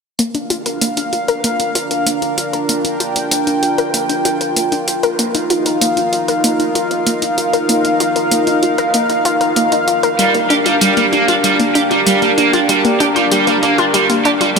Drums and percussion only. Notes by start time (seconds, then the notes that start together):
0.19 closed hi-hat
0.35 closed hi-hat
0.50 closed hi-hat
0.66 closed hi-hat
0.81 closed hi-hat
0.97 closed hi-hat
1.13 closed hi-hat
1.28 closed hi-hat
1.44 closed hi-hat
1.60 closed hi-hat
1.75 closed hi-hat
1.91 closed hi-hat
2.07 closed hi-hat
2.22 closed hi-hat
2.38 closed hi-hat
2.53 closed hi-hat
2.69 closed hi-hat
2.85 closed hi-hat
3.00 closed hi-hat
3.16 closed hi-hat
3.31 closed hi-hat
3.47 closed hi-hat
3.63 closed hi-hat
3.78 closed hi-hat
3.94 closed hi-hat
4.09 closed hi-hat
4.25 closed hi-hat
4.41 closed hi-hat
4.56 closed hi-hat
4.72 closed hi-hat
4.88 closed hi-hat
5.03 closed hi-hat
5.19 closed hi-hat
5.35 closed hi-hat
5.50 closed hi-hat
5.66 closed hi-hat
5.81 closed hi-hat
5.97 closed hi-hat
6.13 closed hi-hat
6.28 closed hi-hat
6.44 closed hi-hat
6.60 closed hi-hat
6.75 closed hi-hat
6.91 closed hi-hat
7.07 closed hi-hat
7.22 closed hi-hat
7.38 closed hi-hat
7.53 closed hi-hat
7.69 closed hi-hat
7.85 closed hi-hat
8.00 closed hi-hat
8.16 closed hi-hat
8.31 closed hi-hat
8.47 closed hi-hat
8.63 closed hi-hat
8.78 closed hi-hat
8.94 closed hi-hat
9.10 closed hi-hat
9.25 closed hi-hat
9.41 closed hi-hat
9.56 closed hi-hat
9.72 closed hi-hat
9.88 closed hi-hat
10.03 closed hi-hat
10.19 closed hi-hat
10.35 closed hi-hat
10.50 closed hi-hat
10.66 closed hi-hat
10.81 closed hi-hat
10.97 closed hi-hat
11.13 closed hi-hat
11.28 closed hi-hat
11.44 closed hi-hat
11.60 closed hi-hat
11.75 closed hi-hat
11.91 closed hi-hat
12.07 closed hi-hat
12.22 closed hi-hat
12.38 closed hi-hat
12.53 closed hi-hat
12.69 closed hi-hat
12.85 closed hi-hat
13.00 closed hi-hat
13.16 closed hi-hat
13.32 closed hi-hat
13.47 closed hi-hat
13.63 closed hi-hat
13.78 closed hi-hat
13.94 closed hi-hat
14.10 closed hi-hat
14.25 closed hi-hat
14.41 closed hi-hat